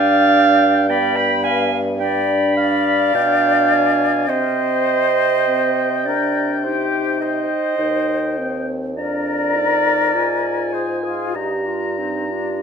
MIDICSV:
0, 0, Header, 1, 6, 480
1, 0, Start_track
1, 0, Key_signature, -3, "minor"
1, 0, Tempo, 1094891
1, 871, Tempo, 1158301
1, 1823, Time_signature, 4, 2, 24, 8
1, 3271, Tempo, 1188119
1, 4711, Tempo, 1284797
1, 5190, End_track
2, 0, Start_track
2, 0, Title_t, "Oboe"
2, 0, Program_c, 0, 68
2, 0, Note_on_c, 0, 79, 76
2, 395, Note_on_c, 0, 83, 77
2, 401, Note_off_c, 0, 79, 0
2, 759, Note_off_c, 0, 83, 0
2, 874, Note_on_c, 0, 83, 74
2, 1351, Note_on_c, 0, 79, 74
2, 1357, Note_off_c, 0, 83, 0
2, 1590, Note_on_c, 0, 80, 73
2, 1597, Note_off_c, 0, 79, 0
2, 1825, Note_on_c, 0, 79, 65
2, 1832, Note_off_c, 0, 80, 0
2, 3269, Note_off_c, 0, 79, 0
2, 3272, Note_on_c, 0, 79, 57
2, 3633, Note_off_c, 0, 79, 0
2, 3757, Note_on_c, 0, 82, 53
2, 4231, Note_on_c, 0, 80, 54
2, 4238, Note_off_c, 0, 82, 0
2, 4715, Note_on_c, 0, 82, 54
2, 4721, Note_off_c, 0, 80, 0
2, 5190, Note_off_c, 0, 82, 0
2, 5190, End_track
3, 0, Start_track
3, 0, Title_t, "Clarinet"
3, 0, Program_c, 1, 71
3, 0, Note_on_c, 1, 77, 126
3, 384, Note_off_c, 1, 77, 0
3, 387, Note_on_c, 1, 79, 100
3, 507, Note_on_c, 1, 83, 101
3, 514, Note_off_c, 1, 79, 0
3, 626, Note_off_c, 1, 83, 0
3, 629, Note_on_c, 1, 80, 94
3, 783, Note_off_c, 1, 80, 0
3, 874, Note_on_c, 1, 79, 92
3, 1096, Note_off_c, 1, 79, 0
3, 1112, Note_on_c, 1, 77, 111
3, 1809, Note_off_c, 1, 77, 0
3, 1822, Note_on_c, 1, 75, 111
3, 2557, Note_on_c, 1, 74, 83
3, 2563, Note_off_c, 1, 75, 0
3, 2766, Note_off_c, 1, 74, 0
3, 2769, Note_on_c, 1, 74, 62
3, 2798, Note_on_c, 1, 72, 79
3, 2804, Note_off_c, 1, 74, 0
3, 3028, Note_off_c, 1, 72, 0
3, 3030, Note_on_c, 1, 75, 96
3, 3625, Note_off_c, 1, 75, 0
3, 3750, Note_on_c, 1, 74, 106
3, 4464, Note_on_c, 1, 72, 67
3, 4470, Note_off_c, 1, 74, 0
3, 4588, Note_on_c, 1, 68, 67
3, 4594, Note_off_c, 1, 72, 0
3, 4714, Note_on_c, 1, 67, 57
3, 4719, Note_off_c, 1, 68, 0
3, 4829, Note_on_c, 1, 65, 60
3, 4834, Note_off_c, 1, 67, 0
3, 4949, Note_on_c, 1, 63, 55
3, 4955, Note_off_c, 1, 65, 0
3, 5070, Note_on_c, 1, 65, 57
3, 5076, Note_off_c, 1, 63, 0
3, 5190, Note_off_c, 1, 65, 0
3, 5190, End_track
4, 0, Start_track
4, 0, Title_t, "Flute"
4, 0, Program_c, 2, 73
4, 0, Note_on_c, 2, 74, 101
4, 382, Note_off_c, 2, 74, 0
4, 391, Note_on_c, 2, 74, 96
4, 508, Note_on_c, 2, 79, 86
4, 515, Note_off_c, 2, 74, 0
4, 628, Note_on_c, 2, 77, 93
4, 635, Note_off_c, 2, 79, 0
4, 785, Note_off_c, 2, 77, 0
4, 875, Note_on_c, 2, 74, 87
4, 1096, Note_off_c, 2, 74, 0
4, 1115, Note_on_c, 2, 74, 99
4, 1825, Note_on_c, 2, 72, 90
4, 1831, Note_off_c, 2, 74, 0
4, 2557, Note_off_c, 2, 72, 0
4, 2559, Note_on_c, 2, 70, 78
4, 2802, Note_on_c, 2, 67, 76
4, 2808, Note_off_c, 2, 70, 0
4, 3039, Note_on_c, 2, 72, 73
4, 3046, Note_off_c, 2, 67, 0
4, 3642, Note_off_c, 2, 72, 0
4, 3757, Note_on_c, 2, 70, 83
4, 4451, Note_off_c, 2, 70, 0
4, 4466, Note_on_c, 2, 68, 53
4, 4585, Note_off_c, 2, 68, 0
4, 4590, Note_on_c, 2, 65, 56
4, 4712, Note_on_c, 2, 63, 54
4, 4718, Note_off_c, 2, 65, 0
4, 4829, Note_on_c, 2, 62, 48
4, 4834, Note_off_c, 2, 63, 0
4, 4948, Note_on_c, 2, 60, 51
4, 4954, Note_off_c, 2, 62, 0
4, 5063, Note_off_c, 2, 60, 0
4, 5066, Note_on_c, 2, 62, 49
4, 5190, Note_off_c, 2, 62, 0
4, 5190, End_track
5, 0, Start_track
5, 0, Title_t, "French horn"
5, 0, Program_c, 3, 60
5, 0, Note_on_c, 3, 62, 74
5, 380, Note_off_c, 3, 62, 0
5, 392, Note_on_c, 3, 59, 76
5, 874, Note_on_c, 3, 62, 78
5, 880, Note_off_c, 3, 59, 0
5, 1350, Note_off_c, 3, 62, 0
5, 1354, Note_on_c, 3, 62, 70
5, 1822, Note_on_c, 3, 60, 65
5, 1829, Note_off_c, 3, 62, 0
5, 2194, Note_off_c, 3, 60, 0
5, 2311, Note_on_c, 3, 60, 69
5, 2557, Note_on_c, 3, 62, 62
5, 2564, Note_off_c, 3, 60, 0
5, 2804, Note_on_c, 3, 63, 60
5, 2810, Note_off_c, 3, 62, 0
5, 3273, Note_off_c, 3, 63, 0
5, 3275, Note_on_c, 3, 63, 64
5, 3513, Note_on_c, 3, 60, 58
5, 3519, Note_off_c, 3, 63, 0
5, 3753, Note_off_c, 3, 60, 0
5, 3756, Note_on_c, 3, 62, 59
5, 3988, Note_off_c, 3, 62, 0
5, 3990, Note_on_c, 3, 63, 56
5, 4224, Note_on_c, 3, 65, 57
5, 4230, Note_off_c, 3, 63, 0
5, 4711, Note_on_c, 3, 67, 51
5, 4717, Note_off_c, 3, 65, 0
5, 5190, Note_off_c, 3, 67, 0
5, 5190, End_track
6, 0, Start_track
6, 0, Title_t, "Bassoon"
6, 0, Program_c, 4, 70
6, 0, Note_on_c, 4, 43, 82
6, 1333, Note_off_c, 4, 43, 0
6, 1350, Note_on_c, 4, 47, 67
6, 1814, Note_off_c, 4, 47, 0
6, 1825, Note_on_c, 4, 48, 70
6, 3144, Note_off_c, 4, 48, 0
6, 3275, Note_on_c, 4, 39, 57
6, 3756, Note_on_c, 4, 41, 58
6, 3762, Note_off_c, 4, 39, 0
6, 4228, Note_on_c, 4, 44, 51
6, 4234, Note_off_c, 4, 41, 0
6, 4711, Note_off_c, 4, 44, 0
6, 4713, Note_on_c, 4, 43, 53
6, 5183, Note_off_c, 4, 43, 0
6, 5190, End_track
0, 0, End_of_file